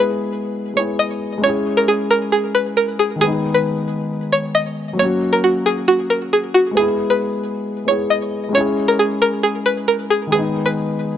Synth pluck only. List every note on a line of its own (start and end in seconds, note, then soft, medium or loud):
0.00 0.51 B4 medium
0.77 0.97 C#5 medium
0.99 1.41 D#5 medium
1.44 1.75 C#5 medium
1.77 1.87 A#4 medium
1.88 2.08 G#4 medium
2.11 2.30 A#4 medium
2.32 2.52 G#4 medium
2.55 2.74 B4 medium
2.77 2.97 A#4 medium
2.99 3.19 G#4 medium
3.21 3.53 G#4 loud
3.54 4.07 B4 medium
4.32 4.52 C#5 medium
4.55 4.96 D#5 medium
4.99 5.31 C#5 loud
5.33 5.42 A#4 medium
5.44 5.63 F#4 medium
5.66 5.86 G#4 medium
5.88 6.08 F#4 medium
6.10 6.30 A#4 medium
6.33 6.53 G#4 medium
6.54 6.74 F#4 medium
6.77 7.08 G#4 loud
7.10 7.62 B4 medium
7.88 8.08 C#5 medium
8.10 8.52 D#5 medium
8.55 8.86 C#5 medium
8.88 8.98 A#4 medium
8.99 9.19 G#4 medium
9.22 9.41 A#4 medium
9.43 9.63 G#4 medium
9.66 9.86 B4 medium
9.88 10.08 A#4 medium
10.10 10.30 G#4 medium
10.32 10.64 G#4 loud
10.66 11.17 B4 medium